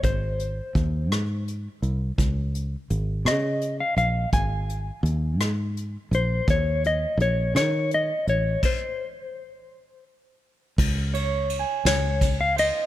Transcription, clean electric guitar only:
\new Staff \with { instrumentName = "Clean electric guitar" } { \time 6/8 \key des \major \tempo 4. = 56 c''2 r4 | r4. ees''8. f''16 f''8 | aes''2 r8 c''8 | des''8 ees''8 des''8 des''8 ees''8 des''8 |
c''2 r4 | r4. des''8. f''16 ees''8 | }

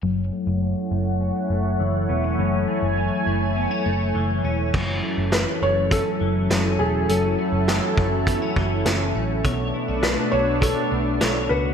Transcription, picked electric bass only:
\new Staff \with { instrumentName = "Picked electric bass" } { \clef bass \time 4/4 \key fis \minor \tempo 4 = 102 fis,,8 r16 fis,,8 r16 fis,,8. r16 fis,,8 fis,,8 e,,8 | fis,,8 r16 fis,,8 r16 fis,,8. r16 fis,,8 fis,,8 e,,8 | fis,,8 r16 fis,,8 r16 fis,,8. r16 fis,,8 fis,,8 e,,8 | fis,,8 r16 fis,,8 r16 fis,,8. r16 fis,,8 fis,,8 a,,8 |
b,,8 r16 b,,8 r16 b,,8. r16 b,,8 b,,8 cis,8 | }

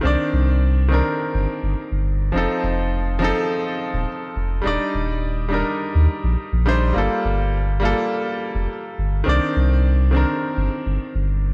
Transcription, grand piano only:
\new Staff \with { instrumentName = "Grand piano" } { \time 4/4 \key c \dorian \tempo 4 = 104 <ees c' d' d''>4. <ees c' d' bes'>2~ <ees c' d' bes'>8 | <f c' ees' a'>4. <f c' ees' a'>2~ <f c' ees' a'>8 | <g d' ees' d''>4. <g d' ees' bes'>2 <g d' ees' c''>8 | <g bes f' a'>4. <g bes f' a'>2~ <g bes f' a'>8 |
<ees c' d' d''>4. <ees c' d' bes'>2~ <ees c' d' bes'>8 | }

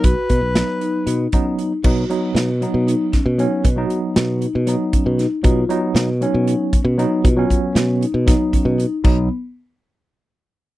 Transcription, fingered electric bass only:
\new Staff \with { instrumentName = "Fingered electric bass" } { \clef bass \time 7/8 \key b \lydian \tempo 4 = 117 b,,16 r16 b,16 b,,8 r8. b,8 r4 | b,8 r8 b,8. b,8 r8 b,8 r16 | b,8 r8 b,8. b,8 r8 b,8 r16 | b,8 r8 b,8. b,8 r8 b,8 r16 |
b,8 r8 b,8. b,8 r8 b,8 r16 | b,,8 r2. | }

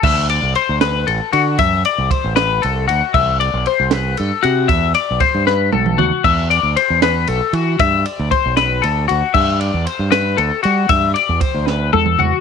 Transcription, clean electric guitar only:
\new Staff \with { instrumentName = "Clean electric guitar" } { \time 6/8 \key d \mixolydian \tempo 4. = 77 e''8 d''8 c''8 b'8 a'8 fis'8 | e''8 d''8 c''8 b'8 a'8 fis'8 | e''8 d''8 c''8 b'8 a'8 fis'8 | e''8 d''8 c''8 b'8 a'8 fis'8 |
e''8 d''8 c''8 b'8 a'8 fis'8 | e''8 d''8 c''8 b'8 a'8 fis'8 | e''8 d''8 c''8 b'8 a'8 fis'8 | e''8 d''8 c''8 b'8 a'8 fis'8 | }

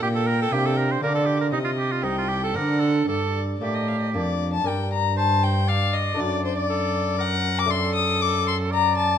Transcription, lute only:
<<
  \new Staff \with { instrumentName = "Lute" } { \time 3/4 \key g \minor \tempo 4 = 118 r4 <bes d'>4 <bes d'>4 | r4 <c' ees'>4 <c' d'>4 | r4 <bes d'>4 <bes d'>4 | <d' bes'>2. |
<a d' d''>2. | <a d' d''>2. | }
  \new Staff \with { instrumentName = "Lute" } { \clef bass \time 3/4 \key g \minor bes,4 c4 d4 | c4 r4 d4 | g,4 a,4 f,4 | g,2. |
fis,2.~ | fis,2. | }
>>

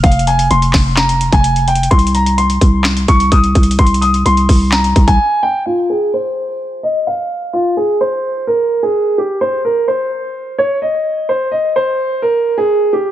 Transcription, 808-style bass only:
\new Staff \with { instrumentName = "808-style bass" } { \clef bass \time 4/4 \key f \minor \tempo 4 = 128 f,,4 f,,8 f,,4~ f,,16 f,,4~ f,,16 | c,4. c,4 c,8 c,8 c,8 | c,4 c,8 c,4 c,8 r4 | r1 |
r1 | r1 | r1 | }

